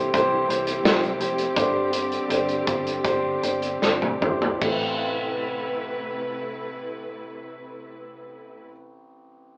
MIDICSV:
0, 0, Header, 1, 5, 480
1, 0, Start_track
1, 0, Key_signature, 0, "minor"
1, 0, Tempo, 718563
1, 1039, Time_signature, 4, 2, 24, 8
1, 1529, Tempo, 763359
1, 2489, Tempo, 809717
1, 5903, End_track
2, 0, Start_track
2, 0, Title_t, "Grand piano"
2, 0, Program_c, 0, 0
2, 0, Control_c, 0, 64, 127
2, 0, Note_on_c, 0, 43, 62
2, 0, Note_on_c, 0, 64, 75
2, 0, Note_on_c, 0, 67, 66
2, 0, Note_on_c, 0, 69, 81
2, 0, Note_on_c, 0, 72, 84
2, 92, Note_off_c, 0, 64, 0
2, 92, Note_on_c, 0, 64, 94
2, 99, Note_off_c, 0, 67, 0
2, 99, Note_on_c, 0, 67, 87
2, 101, Note_off_c, 0, 72, 0
2, 101, Note_on_c, 0, 72, 104
2, 283, Note_off_c, 0, 64, 0
2, 287, Note_off_c, 0, 67, 0
2, 288, Note_off_c, 0, 72, 0
2, 325, Note_on_c, 0, 64, 69
2, 331, Note_on_c, 0, 67, 62
2, 336, Note_on_c, 0, 72, 77
2, 519, Note_off_c, 0, 64, 0
2, 522, Note_off_c, 0, 67, 0
2, 525, Note_off_c, 0, 72, 0
2, 562, Note_on_c, 0, 64, 73
2, 567, Note_on_c, 0, 67, 62
2, 572, Note_on_c, 0, 72, 79
2, 758, Note_off_c, 0, 64, 0
2, 760, Note_off_c, 0, 67, 0
2, 763, Note_off_c, 0, 72, 0
2, 797, Note_on_c, 0, 64, 74
2, 804, Note_on_c, 0, 67, 65
2, 809, Note_on_c, 0, 72, 75
2, 996, Note_off_c, 0, 64, 0
2, 1000, Note_off_c, 0, 67, 0
2, 1003, Note_off_c, 0, 72, 0
2, 1036, Note_on_c, 0, 62, 90
2, 1042, Note_off_c, 0, 43, 0
2, 1042, Note_on_c, 0, 43, 60
2, 1042, Note_on_c, 0, 50, 59
2, 1043, Note_on_c, 0, 67, 79
2, 1047, Control_c, 0, 64, 0
2, 1047, Note_on_c, 0, 72, 98
2, 1051, Note_off_c, 0, 69, 0
2, 1175, Control_c, 0, 64, 127
2, 1239, Note_off_c, 0, 62, 0
2, 1242, Note_off_c, 0, 67, 0
2, 1244, Note_off_c, 0, 72, 0
2, 1278, Note_on_c, 0, 62, 65
2, 1283, Note_on_c, 0, 67, 63
2, 1287, Note_on_c, 0, 74, 81
2, 1484, Note_off_c, 0, 62, 0
2, 1487, Note_off_c, 0, 67, 0
2, 1488, Note_off_c, 0, 74, 0
2, 1524, Note_on_c, 0, 62, 73
2, 1532, Note_on_c, 0, 67, 60
2, 1536, Note_on_c, 0, 72, 78
2, 1721, Note_off_c, 0, 62, 0
2, 1724, Note_off_c, 0, 67, 0
2, 1727, Note_off_c, 0, 72, 0
2, 1741, Note_off_c, 0, 43, 0
2, 1741, Note_off_c, 0, 50, 0
2, 1759, Note_on_c, 0, 62, 70
2, 1762, Note_on_c, 0, 67, 66
2, 1769, Note_on_c, 0, 72, 72
2, 1958, Note_off_c, 0, 62, 0
2, 1959, Note_off_c, 0, 67, 0
2, 1963, Note_off_c, 0, 72, 0
2, 2000, Note_on_c, 0, 62, 89
2, 2003, Note_on_c, 0, 67, 76
2, 2008, Note_on_c, 0, 72, 97
2, 2200, Note_off_c, 0, 62, 0
2, 2202, Note_off_c, 0, 67, 0
2, 2205, Note_off_c, 0, 72, 0
2, 2241, Note_on_c, 0, 62, 62
2, 2246, Note_on_c, 0, 67, 59
2, 2249, Note_on_c, 0, 72, 71
2, 2445, Note_off_c, 0, 62, 0
2, 2447, Note_off_c, 0, 67, 0
2, 2449, Note_off_c, 0, 72, 0
2, 2486, Note_on_c, 0, 62, 65
2, 2492, Note_on_c, 0, 67, 59
2, 2496, Note_on_c, 0, 72, 67
2, 2681, Note_off_c, 0, 62, 0
2, 2684, Note_off_c, 0, 67, 0
2, 2686, Note_off_c, 0, 72, 0
2, 2722, Note_on_c, 0, 62, 68
2, 2727, Note_on_c, 0, 67, 60
2, 2732, Note_on_c, 0, 72, 73
2, 2919, Note_off_c, 0, 62, 0
2, 2922, Note_off_c, 0, 67, 0
2, 2924, Note_off_c, 0, 72, 0
2, 2948, Note_on_c, 0, 60, 56
2, 2969, Note_on_c, 0, 33, 55
2, 2969, Note_on_c, 0, 69, 54
2, 2970, Control_c, 0, 64, 0
2, 2990, Note_on_c, 0, 71, 65
2, 3088, Control_c, 0, 64, 127
2, 5351, Note_off_c, 0, 60, 0
2, 5372, Note_off_c, 0, 33, 0
2, 5372, Note_off_c, 0, 69, 0
2, 5393, Note_off_c, 0, 71, 0
2, 5903, End_track
3, 0, Start_track
3, 0, Title_t, "String section"
3, 0, Program_c, 1, 48
3, 0, Note_on_c, 1, 52, 72
3, 0, Note_on_c, 1, 55, 68
3, 0, Note_on_c, 1, 60, 66
3, 0, Note_on_c, 1, 67, 74
3, 1022, Note_off_c, 1, 52, 0
3, 1043, Note_on_c, 1, 50, 69
3, 2939, Note_off_c, 1, 55, 0
3, 2940, Note_off_c, 1, 67, 0
3, 2941, Note_off_c, 1, 60, 0
3, 2945, Note_off_c, 1, 50, 0
3, 2960, Note_on_c, 1, 71, 69
3, 2962, Note_on_c, 1, 48, 61
3, 2962, Note_on_c, 1, 64, 57
3, 2963, Note_on_c, 1, 57, 57
3, 5336, Note_off_c, 1, 71, 0
3, 5337, Note_off_c, 1, 48, 0
3, 5337, Note_off_c, 1, 64, 0
3, 5338, Note_off_c, 1, 57, 0
3, 5903, End_track
4, 0, Start_track
4, 0, Title_t, "Fingered electric bass"
4, 0, Program_c, 2, 33
4, 91, Note_on_c, 2, 36, 84
4, 282, Note_off_c, 2, 36, 0
4, 325, Note_on_c, 2, 36, 75
4, 518, Note_off_c, 2, 36, 0
4, 558, Note_on_c, 2, 36, 80
4, 800, Note_on_c, 2, 29, 71
4, 810, Note_off_c, 2, 36, 0
4, 997, Note_off_c, 2, 29, 0
4, 1043, Note_on_c, 2, 31, 84
4, 1444, Note_off_c, 2, 31, 0
4, 1533, Note_on_c, 2, 31, 89
4, 1724, Note_off_c, 2, 31, 0
4, 1769, Note_on_c, 2, 31, 68
4, 1962, Note_off_c, 2, 31, 0
4, 2006, Note_on_c, 2, 31, 78
4, 2203, Note_off_c, 2, 31, 0
4, 2248, Note_on_c, 2, 31, 81
4, 2447, Note_off_c, 2, 31, 0
4, 2488, Note_on_c, 2, 31, 70
4, 2681, Note_off_c, 2, 31, 0
4, 2718, Note_on_c, 2, 31, 72
4, 2916, Note_off_c, 2, 31, 0
4, 2963, Note_on_c, 2, 33, 72
4, 5366, Note_off_c, 2, 33, 0
4, 5903, End_track
5, 0, Start_track
5, 0, Title_t, "Drums"
5, 93, Note_on_c, 9, 36, 83
5, 99, Note_on_c, 9, 42, 72
5, 160, Note_off_c, 9, 36, 0
5, 165, Note_off_c, 9, 42, 0
5, 336, Note_on_c, 9, 42, 59
5, 403, Note_off_c, 9, 42, 0
5, 448, Note_on_c, 9, 42, 49
5, 514, Note_off_c, 9, 42, 0
5, 570, Note_on_c, 9, 38, 94
5, 571, Note_on_c, 9, 42, 67
5, 637, Note_off_c, 9, 38, 0
5, 638, Note_off_c, 9, 42, 0
5, 692, Note_on_c, 9, 42, 30
5, 759, Note_off_c, 9, 42, 0
5, 806, Note_on_c, 9, 42, 57
5, 873, Note_off_c, 9, 42, 0
5, 924, Note_on_c, 9, 42, 44
5, 991, Note_off_c, 9, 42, 0
5, 1045, Note_on_c, 9, 36, 85
5, 1048, Note_on_c, 9, 42, 77
5, 1112, Note_off_c, 9, 36, 0
5, 1115, Note_off_c, 9, 42, 0
5, 1289, Note_on_c, 9, 42, 65
5, 1356, Note_off_c, 9, 42, 0
5, 1415, Note_on_c, 9, 42, 40
5, 1482, Note_off_c, 9, 42, 0
5, 1538, Note_on_c, 9, 42, 64
5, 1601, Note_off_c, 9, 42, 0
5, 1653, Note_on_c, 9, 42, 29
5, 1716, Note_off_c, 9, 42, 0
5, 1770, Note_on_c, 9, 42, 55
5, 1771, Note_on_c, 9, 36, 81
5, 1833, Note_off_c, 9, 42, 0
5, 1834, Note_off_c, 9, 36, 0
5, 1893, Note_on_c, 9, 42, 39
5, 1956, Note_off_c, 9, 42, 0
5, 2005, Note_on_c, 9, 36, 81
5, 2006, Note_on_c, 9, 42, 64
5, 2068, Note_off_c, 9, 36, 0
5, 2069, Note_off_c, 9, 42, 0
5, 2249, Note_on_c, 9, 42, 55
5, 2312, Note_off_c, 9, 42, 0
5, 2367, Note_on_c, 9, 42, 45
5, 2430, Note_off_c, 9, 42, 0
5, 2493, Note_on_c, 9, 38, 42
5, 2552, Note_off_c, 9, 38, 0
5, 2611, Note_on_c, 9, 48, 45
5, 2670, Note_off_c, 9, 48, 0
5, 2729, Note_on_c, 9, 45, 62
5, 2788, Note_off_c, 9, 45, 0
5, 2846, Note_on_c, 9, 43, 64
5, 2905, Note_off_c, 9, 43, 0
5, 2963, Note_on_c, 9, 36, 76
5, 2964, Note_on_c, 9, 49, 60
5, 3022, Note_off_c, 9, 36, 0
5, 3023, Note_off_c, 9, 49, 0
5, 5903, End_track
0, 0, End_of_file